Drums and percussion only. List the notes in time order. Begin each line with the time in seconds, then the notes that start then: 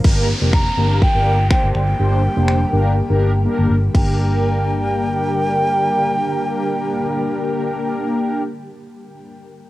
0.04 kick, crash
0.53 finger snap, kick
1.02 kick
1.51 finger snap, kick
1.75 finger snap
2.48 finger snap
3.95 kick, crash